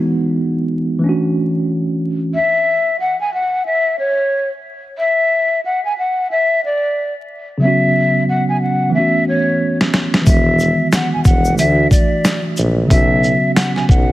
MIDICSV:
0, 0, Header, 1, 5, 480
1, 0, Start_track
1, 0, Key_signature, 4, "major"
1, 0, Tempo, 659341
1, 1713, Time_signature, 4, 2, 24, 8
1, 10279, End_track
2, 0, Start_track
2, 0, Title_t, "Flute"
2, 0, Program_c, 0, 73
2, 1706, Note_on_c, 0, 76, 115
2, 2161, Note_off_c, 0, 76, 0
2, 2184, Note_on_c, 0, 78, 92
2, 2320, Note_off_c, 0, 78, 0
2, 2334, Note_on_c, 0, 80, 79
2, 2421, Note_off_c, 0, 80, 0
2, 2431, Note_on_c, 0, 78, 83
2, 2648, Note_off_c, 0, 78, 0
2, 2666, Note_on_c, 0, 76, 95
2, 2885, Note_off_c, 0, 76, 0
2, 2906, Note_on_c, 0, 73, 89
2, 3273, Note_off_c, 0, 73, 0
2, 3627, Note_on_c, 0, 76, 107
2, 4081, Note_off_c, 0, 76, 0
2, 4115, Note_on_c, 0, 78, 88
2, 4246, Note_off_c, 0, 78, 0
2, 4259, Note_on_c, 0, 80, 86
2, 4343, Note_off_c, 0, 80, 0
2, 4353, Note_on_c, 0, 78, 81
2, 4569, Note_off_c, 0, 78, 0
2, 4595, Note_on_c, 0, 76, 98
2, 4810, Note_off_c, 0, 76, 0
2, 4841, Note_on_c, 0, 74, 87
2, 5200, Note_off_c, 0, 74, 0
2, 5546, Note_on_c, 0, 76, 108
2, 6000, Note_off_c, 0, 76, 0
2, 6034, Note_on_c, 0, 78, 88
2, 6166, Note_off_c, 0, 78, 0
2, 6179, Note_on_c, 0, 80, 80
2, 6263, Note_off_c, 0, 80, 0
2, 6274, Note_on_c, 0, 78, 75
2, 6490, Note_off_c, 0, 78, 0
2, 6511, Note_on_c, 0, 76, 98
2, 6728, Note_off_c, 0, 76, 0
2, 6758, Note_on_c, 0, 73, 86
2, 7119, Note_off_c, 0, 73, 0
2, 7470, Note_on_c, 0, 76, 103
2, 7922, Note_off_c, 0, 76, 0
2, 7966, Note_on_c, 0, 78, 77
2, 8092, Note_off_c, 0, 78, 0
2, 8104, Note_on_c, 0, 80, 80
2, 8183, Note_off_c, 0, 80, 0
2, 8188, Note_on_c, 0, 78, 84
2, 8406, Note_off_c, 0, 78, 0
2, 8433, Note_on_c, 0, 76, 105
2, 8649, Note_off_c, 0, 76, 0
2, 8670, Note_on_c, 0, 74, 91
2, 9035, Note_off_c, 0, 74, 0
2, 9388, Note_on_c, 0, 76, 116
2, 9842, Note_off_c, 0, 76, 0
2, 9864, Note_on_c, 0, 78, 92
2, 10000, Note_off_c, 0, 78, 0
2, 10013, Note_on_c, 0, 80, 82
2, 10100, Note_off_c, 0, 80, 0
2, 10111, Note_on_c, 0, 78, 83
2, 10279, Note_off_c, 0, 78, 0
2, 10279, End_track
3, 0, Start_track
3, 0, Title_t, "Tine electric piano"
3, 0, Program_c, 1, 4
3, 0, Control_c, 1, 64, 127
3, 0, Note_on_c, 1, 52, 71
3, 0, Note_on_c, 1, 56, 58
3, 0, Note_on_c, 1, 59, 63
3, 0, Note_on_c, 1, 63, 66
3, 0, Note_on_c, 1, 66, 73
3, 711, Note_off_c, 1, 52, 0
3, 720, Note_on_c, 1, 52, 66
3, 723, Note_off_c, 1, 56, 0
3, 732, Note_off_c, 1, 59, 0
3, 738, Note_on_c, 1, 57, 60
3, 741, Note_off_c, 1, 63, 0
3, 750, Note_off_c, 1, 66, 0
3, 756, Note_on_c, 1, 61, 68
3, 763, Control_c, 1, 64, 0
3, 774, Note_on_c, 1, 62, 65
3, 791, Note_on_c, 1, 66, 77
3, 878, Control_c, 1, 64, 127
3, 1677, Note_off_c, 1, 52, 0
3, 1686, Note_off_c, 1, 57, 0
3, 1695, Note_off_c, 1, 61, 0
3, 1704, Note_off_c, 1, 62, 0
3, 1713, Note_off_c, 1, 66, 0
3, 1722, Control_c, 1, 64, 0
3, 5515, Note_on_c, 1, 49, 70
3, 5532, Note_on_c, 1, 54, 62
3, 5551, Note_on_c, 1, 59, 60
3, 5569, Note_on_c, 1, 61, 64
3, 5586, Note_on_c, 1, 66, 76
3, 5694, Control_c, 1, 64, 127
3, 6474, Note_off_c, 1, 49, 0
3, 6479, Note_on_c, 1, 52, 68
3, 6483, Note_off_c, 1, 54, 0
3, 6493, Note_off_c, 1, 59, 0
3, 6496, Note_on_c, 1, 57, 62
3, 6502, Note_off_c, 1, 61, 0
3, 6511, Note_off_c, 1, 66, 0
3, 6514, Note_on_c, 1, 59, 55
3, 6523, Control_c, 1, 64, 0
3, 6532, Note_on_c, 1, 61, 63
3, 6549, Note_on_c, 1, 66, 74
3, 6664, Control_c, 1, 64, 127
3, 7424, Note_off_c, 1, 52, 0
3, 7433, Note_on_c, 1, 52, 72
3, 7445, Note_off_c, 1, 57, 0
3, 7451, Note_on_c, 1, 56, 58
3, 7454, Note_off_c, 1, 59, 0
3, 7463, Note_off_c, 1, 61, 0
3, 7469, Note_on_c, 1, 59, 61
3, 7472, Note_off_c, 1, 66, 0
3, 7484, Control_c, 1, 64, 0
3, 7487, Note_on_c, 1, 51, 65
3, 7505, Note_on_c, 1, 66, 73
3, 7604, Control_c, 1, 64, 127
3, 8393, Note_off_c, 1, 52, 0
3, 8402, Note_off_c, 1, 56, 0
3, 8402, Note_on_c, 1, 52, 66
3, 8412, Note_off_c, 1, 59, 0
3, 8420, Note_on_c, 1, 57, 60
3, 8421, Note_off_c, 1, 51, 0
3, 8430, Note_off_c, 1, 66, 0
3, 8441, Control_c, 1, 64, 0
3, 8455, Note_on_c, 1, 62, 63
3, 8473, Note_on_c, 1, 66, 77
3, 8564, Control_c, 1, 64, 127
3, 9356, Note_on_c, 1, 49, 70
3, 9358, Note_off_c, 1, 52, 0
3, 9367, Note_off_c, 1, 57, 0
3, 9374, Note_on_c, 1, 54, 61
3, 9385, Note_off_c, 1, 62, 0
3, 9392, Note_on_c, 1, 59, 62
3, 9394, Note_off_c, 1, 66, 0
3, 9402, Control_c, 1, 64, 0
3, 9409, Note_on_c, 1, 61, 65
3, 9427, Note_on_c, 1, 66, 79
3, 9513, Control_c, 1, 64, 127
3, 10279, Note_off_c, 1, 49, 0
3, 10279, Note_off_c, 1, 54, 0
3, 10279, Note_off_c, 1, 59, 0
3, 10279, Note_off_c, 1, 61, 0
3, 10279, Note_off_c, 1, 66, 0
3, 10279, End_track
4, 0, Start_track
4, 0, Title_t, "Tuba"
4, 0, Program_c, 2, 58
4, 7477, Note_on_c, 2, 28, 113
4, 7789, Note_off_c, 2, 28, 0
4, 8106, Note_on_c, 2, 28, 49
4, 8142, Note_off_c, 2, 28, 0
4, 8195, Note_on_c, 2, 28, 97
4, 8439, Note_on_c, 2, 38, 117
4, 8450, Note_off_c, 2, 28, 0
4, 8631, Note_off_c, 2, 38, 0
4, 9160, Note_on_c, 2, 34, 103
4, 9352, Note_off_c, 2, 34, 0
4, 9397, Note_on_c, 2, 35, 118
4, 9709, Note_off_c, 2, 35, 0
4, 10026, Note_on_c, 2, 35, 50
4, 10062, Note_off_c, 2, 35, 0
4, 10114, Note_on_c, 2, 35, 96
4, 10279, Note_off_c, 2, 35, 0
4, 10279, End_track
5, 0, Start_track
5, 0, Title_t, "Drums"
5, 7140, Note_on_c, 9, 38, 85
5, 7213, Note_off_c, 9, 38, 0
5, 7234, Note_on_c, 9, 38, 106
5, 7307, Note_off_c, 9, 38, 0
5, 7381, Note_on_c, 9, 38, 98
5, 7454, Note_off_c, 9, 38, 0
5, 7472, Note_on_c, 9, 82, 59
5, 7474, Note_on_c, 9, 36, 116
5, 7478, Note_on_c, 9, 42, 90
5, 7545, Note_off_c, 9, 82, 0
5, 7547, Note_off_c, 9, 36, 0
5, 7551, Note_off_c, 9, 42, 0
5, 7712, Note_on_c, 9, 82, 51
5, 7716, Note_off_c, 9, 82, 0
5, 7716, Note_on_c, 9, 82, 56
5, 7789, Note_off_c, 9, 82, 0
5, 7954, Note_on_c, 9, 38, 121
5, 7954, Note_on_c, 9, 82, 80
5, 7960, Note_on_c, 9, 42, 78
5, 8027, Note_off_c, 9, 38, 0
5, 8027, Note_off_c, 9, 82, 0
5, 8032, Note_off_c, 9, 42, 0
5, 8190, Note_on_c, 9, 82, 52
5, 8191, Note_on_c, 9, 36, 93
5, 8202, Note_off_c, 9, 82, 0
5, 8202, Note_on_c, 9, 82, 53
5, 8264, Note_off_c, 9, 36, 0
5, 8275, Note_off_c, 9, 82, 0
5, 8335, Note_on_c, 9, 82, 51
5, 8408, Note_off_c, 9, 82, 0
5, 8432, Note_on_c, 9, 82, 72
5, 8437, Note_on_c, 9, 42, 82
5, 8505, Note_off_c, 9, 82, 0
5, 8510, Note_off_c, 9, 42, 0
5, 8670, Note_on_c, 9, 36, 100
5, 8674, Note_on_c, 9, 82, 50
5, 8682, Note_off_c, 9, 82, 0
5, 8682, Note_on_c, 9, 42, 55
5, 8682, Note_on_c, 9, 82, 56
5, 8743, Note_off_c, 9, 36, 0
5, 8755, Note_off_c, 9, 42, 0
5, 8755, Note_off_c, 9, 82, 0
5, 8916, Note_on_c, 9, 38, 123
5, 8917, Note_on_c, 9, 82, 77
5, 8921, Note_on_c, 9, 42, 62
5, 8989, Note_off_c, 9, 38, 0
5, 8990, Note_off_c, 9, 82, 0
5, 8994, Note_off_c, 9, 42, 0
5, 9151, Note_on_c, 9, 82, 49
5, 9224, Note_off_c, 9, 82, 0
5, 9394, Note_on_c, 9, 36, 113
5, 9398, Note_on_c, 9, 42, 89
5, 9467, Note_off_c, 9, 36, 0
5, 9471, Note_off_c, 9, 42, 0
5, 9636, Note_on_c, 9, 82, 57
5, 9709, Note_off_c, 9, 82, 0
5, 9875, Note_on_c, 9, 38, 116
5, 9880, Note_on_c, 9, 42, 78
5, 9948, Note_off_c, 9, 38, 0
5, 9953, Note_off_c, 9, 42, 0
5, 10019, Note_on_c, 9, 38, 37
5, 10092, Note_off_c, 9, 38, 0
5, 10112, Note_on_c, 9, 36, 95
5, 10123, Note_on_c, 9, 82, 54
5, 10184, Note_off_c, 9, 36, 0
5, 10196, Note_off_c, 9, 82, 0
5, 10279, End_track
0, 0, End_of_file